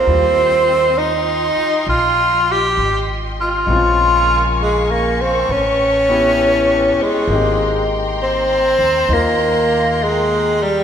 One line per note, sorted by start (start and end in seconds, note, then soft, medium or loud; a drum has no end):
0.00 0.99 C4 medium
0.00 3.64 F4 medium
0.06 1.53 D#2 medium
0.06 3.68 G3 soft
0.06 3.69 A#3 soft
0.06 3.67 C4 soft
0.06 3.69 F4 soft
0.06 3.65 D#5 medium
0.06 3.65 G5 medium
0.06 3.64 C6 medium
0.98 1.88 D#4 medium
1.56 muted upright bass stroke soft
1.87 2.73 A#1 medium
1.87 2.53 F4 medium
2.51 3.04 G4 loud
2.77 3.64 G#1 medium
3.41 4.56 F4 medium
3.67 5.44 A#1 medium
3.67 5.50 C#3 soft
3.67 5.48 G#3 medium
3.67 5.49 C4 soft
3.67 5.48 A#4 medium
3.67 5.48 F5 medium
3.67 5.47 G#5 medium
3.71 5.51 F4 medium
3.71 7.27 C#6 medium
4.62 4.93 G#3 medium
4.91 5.23 A#3 medium
5.21 5.53 C4 medium
5.46 6.94 A1 medium
5.46 7.26 B4 medium
5.46 10.84 G5 medium
5.46 7.26 A5 medium
5.52 7.04 C#4 medium
6.09 7.29 B3 medium
6.09 7.30 C#4 soft
6.09 7.30 E4 soft
6.09 7.30 G4 medium
6.98 muted upright bass stroke soft
7.02 7.90 G#3 medium
7.27 8.73 G#1 medium
7.27 10.84 A#3 medium
7.27 10.84 C4 medium
7.27 10.84 A#5 medium
7.27 10.84 C6 medium
7.32 9.08 D#4 medium
7.32 10.84 G4 medium
8.23 9.15 C4 medium
8.79 9.07 D#2 medium
9.08 10.84 D#2 medium
9.08 10.84 D#4 soft
9.08 10.84 F4 soft
9.13 10.05 A#3 medium
9.13 10.84 A#4 soft
10.03 10.64 G#3 medium
10.62 10.84 G3 medium